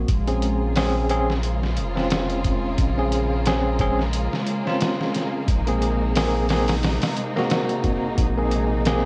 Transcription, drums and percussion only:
0.08 kick, closed hi-hat
0.27 closed hi-hat
0.42 closed hi-hat
0.76 snare, open hi-hat
1.09 closed hi-hat
1.30 snare
1.43 closed hi-hat
1.63 snare
1.77 closed hi-hat
1.97 snare
2.10 snare, closed hi-hat
2.30 closed hi-hat
2.44 kick, closed hi-hat
2.78 kick, closed hi-hat
3.12 closed hi-hat
3.46 snare, closed hi-hat
3.79 kick, closed hi-hat
3.99 snare
4.13 closed hi-hat
4.33 snare
4.47 closed hi-hat
4.67 snare
4.80 snare, closed hi-hat
5.01 snare
5.14 snare, closed hi-hat
5.48 kick, closed hi-hat
5.67 closed hi-hat
5.82 closed hi-hat
6.15 snare, open hi-hat
6.49 snare, open hi-hat
6.68 snare, open hi-hat
6.83 snare, open hi-hat
7.02 snare, open hi-hat
7.17 closed hi-hat
7.37 snare
7.50 snare, closed hi-hat
7.69 closed hi-hat
7.84 kick, closed hi-hat
8.18 kick, closed hi-hat
8.51 closed hi-hat
8.85 snare, closed hi-hat

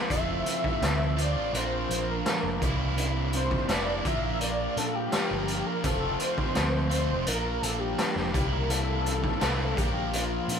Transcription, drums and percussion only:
0.10 kick, closed hi-hat
0.46 closed hi-hat
0.64 kick
0.82 snare, closed hi-hat
1.18 closed hi-hat
1.54 closed hi-hat
1.91 closed hi-hat
2.26 snare, closed hi-hat
2.62 kick, closed hi-hat
2.98 closed hi-hat
3.33 closed hi-hat
3.51 kick
3.69 snare, closed hi-hat
4.05 kick, closed hi-hat
4.41 closed hi-hat
4.77 closed hi-hat
5.12 snare, closed hi-hat
5.48 closed hi-hat
5.84 kick, closed hi-hat
6.20 closed hi-hat
6.38 kick
6.55 snare, closed hi-hat
6.91 closed hi-hat
7.27 closed hi-hat
7.63 closed hi-hat
7.98 snare, closed hi-hat
8.17 snare
8.34 kick, closed hi-hat
8.70 closed hi-hat
9.06 closed hi-hat
9.24 kick
9.41 snare, closed hi-hat
9.77 kick, closed hi-hat
10.13 closed hi-hat
10.49 closed hi-hat

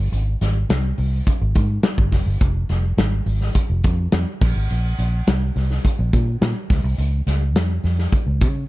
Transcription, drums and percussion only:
0.13 closed hi-hat
0.41 snare, closed hi-hat
0.70 snare, closed hi-hat
0.98 open hi-hat
1.27 kick, closed hi-hat
1.55 kick, closed hi-hat
1.83 snare, closed hi-hat
1.98 kick
2.12 kick, snare, open hi-hat
2.41 kick, closed hi-hat
2.69 snare, closed hi-hat
2.98 snare, closed hi-hat
3.26 open hi-hat
3.41 snare
3.55 kick, closed hi-hat
3.84 kick, closed hi-hat
4.12 snare, closed hi-hat
4.41 kick, snare, crash
4.70 closed hi-hat
4.99 closed hi-hat
5.27 snare, closed hi-hat
5.56 snare, open hi-hat
5.71 snare
5.85 kick, closed hi-hat
6.13 kick, closed hi-hat
6.42 snare, closed hi-hat
6.70 kick, snare, open hi-hat
6.98 closed hi-hat
7.27 snare, closed hi-hat
7.56 snare, closed hi-hat
7.84 snare, open hi-hat
7.98 snare
8.12 kick, closed hi-hat
8.41 kick, closed hi-hat

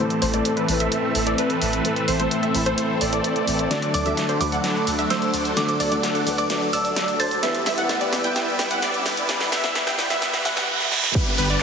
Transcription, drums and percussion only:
0.10 closed hi-hat
0.22 open hi-hat
0.34 closed hi-hat
0.45 closed hi-hat
0.57 closed hi-hat
0.68 open hi-hat
0.80 closed hi-hat
0.92 closed hi-hat
1.15 open hi-hat
1.27 closed hi-hat
1.38 closed hi-hat
1.50 closed hi-hat
1.62 open hi-hat
1.73 closed hi-hat
1.85 closed hi-hat
1.96 closed hi-hat
2.08 open hi-hat
2.20 closed hi-hat
2.31 closed hi-hat
2.43 closed hi-hat
2.55 open hi-hat
2.66 closed hi-hat
2.78 closed hi-hat
3.01 open hi-hat
3.13 closed hi-hat
3.24 closed hi-hat
3.36 closed hi-hat
3.47 open hi-hat
3.59 closed hi-hat
3.71 snare, closed hi-hat, shaker
3.82 closed hi-hat, shaker
3.94 open hi-hat, shaker
4.06 closed hi-hat, shaker
4.17 snare, closed hi-hat, shaker
4.29 closed hi-hat, shaker
4.41 open hi-hat, shaker
4.52 closed hi-hat, shaker
4.64 snare, closed hi-hat, shaker
4.76 shaker
4.87 open hi-hat, shaker
4.99 closed hi-hat, shaker
5.10 snare, closed hi-hat, shaker
5.22 closed hi-hat, shaker
5.34 open hi-hat, shaker
5.45 closed hi-hat, shaker
5.57 snare, closed hi-hat, shaker
5.68 closed hi-hat, shaker
5.80 open hi-hat, shaker
5.92 closed hi-hat, shaker
6.03 snare, closed hi-hat, shaker
6.15 closed hi-hat, shaker
6.27 open hi-hat, shaker
6.38 closed hi-hat, shaker
6.50 snare, closed hi-hat, shaker
6.62 shaker
6.73 open hi-hat, shaker
6.85 closed hi-hat, shaker
6.96 snare, closed hi-hat, shaker
7.08 closed hi-hat, shaker
7.20 open hi-hat, shaker
7.31 closed hi-hat, shaker
7.43 snare, closed hi-hat, shaker
7.55 closed hi-hat, shaker
7.66 snare, open hi-hat, shaker
7.78 closed hi-hat, shaker
7.89 snare, closed hi-hat, shaker
8.01 closed hi-hat, shaker
8.13 snare, open hi-hat, shaker
8.24 closed hi-hat, shaker
8.36 snare, closed hi-hat, shaker
8.48 shaker
8.59 snare, open hi-hat, shaker
8.71 closed hi-hat, shaker
8.82 snare, closed hi-hat, shaker
8.94 closed hi-hat, shaker
9.06 snare, open hi-hat, shaker
9.17 closed hi-hat, shaker
9.29 snare, closed hi-hat, shaker
9.41 snare, closed hi-hat, shaker
9.52 snare, open hi-hat, shaker
9.64 snare, closed hi-hat, shaker
9.75 snare, closed hi-hat, shaker
9.87 snare, closed hi-hat, shaker
9.99 snare, open hi-hat, shaker
10.10 snare, closed hi-hat, shaker
10.22 snare, closed hi-hat, shaker
10.34 snare, closed hi-hat, shaker
10.45 snare, open hi-hat, shaker
10.57 snare, closed hi-hat, shaker
10.80 snare
10.92 snare
11.03 snare
11.15 kick, closed hi-hat, crash, shaker
11.27 closed hi-hat, shaker
11.38 open hi-hat, shaker
11.50 closed hi-hat, shaker

